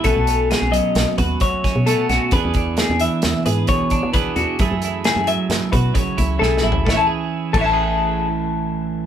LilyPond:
<<
  \new Staff \with { instrumentName = "Clean electric guitar" } { \time 5/4 \key a \major \tempo 4 = 132 a'4 gis'8 dis''4 b'8 cis''4 a'8 fis'8 | b'4 gis'8 e''4 b'8 cis''4 b'8 fis'8 | r4 gis'8 e''4 b'8 cis''4 a'8 e'8 | <a' cis'' e'' a''>8 r4 <a' cis'' e'' a''>2.~ <a' cis'' e'' a''>8 | }
  \new Staff \with { instrumentName = "Clean electric guitar" } { \time 5/4 \key a \major << { <a cis' fis'>8 cis'2 fis'4 cis'8 <a cis' fis'>8 cis'8 | <b d' gis'>8 d'2 gis'4 d'8 <b d' gis'>8 d'8 | <a e' gis'>8 e'2 fis'4 e'8 <a e' gis'>8 e'8 | <e cis' e' gis'>8 r4 <e cis' e' gis' a' cis'' e''>2.~ <e cis' e' gis' a' cis'' e''>8 | } \\ { b,4. fis4. fis,4 b,4 | e,4. e4. b,4 e,4 | fis,4. fis4. cis4 fis,4 | a,8 r4 a,2.~ a,8 | } >> }
  \new Staff \with { instrumentName = "FM bass" } { \clef bass \time 5/4 \key a \major b,,16 b,,4 b,,8 r16 b,,16 r16 dis,8 r8. b,8 r16 b,,16 r16 | e,16 e,4 e,8 r16 e,16 r16 gis,8 r8. e8 r16 e,16 r16 | fis,16 fis,4 fis,8 r16 fis,16 r16 b,8 r8 cis,8 b,,8 a,,8 | a,,16 r4 r16 a,,2.~ a,,8 | }
  \new DrumStaff \with { instrumentName = "Drums" } \drummode { \time 5/4 <hh bd>8 hh8 <hh sn>8 hh8 <hh sn>8 <hh bd>8 <hh bd>8 <hh bd sn>8 hh8 <hh sn>8 | <hh bd>8 <hh bd>8 <hh sn>8 hh8 <hh sn>8 hh8 <hh bd>8 <hh bd>8 <hh bd>8 hh8 | <hh bd>8 hh8 <hh sn>8 hh8 <hh sn>8 <hh bd>8 <hh bd>8 <hh bd>8 \tuplet 3/2 { sn8 sn8 tomfh8 } | <bd sn>4 r8 <cymc bd>8 r4 r4 r4 | }
>>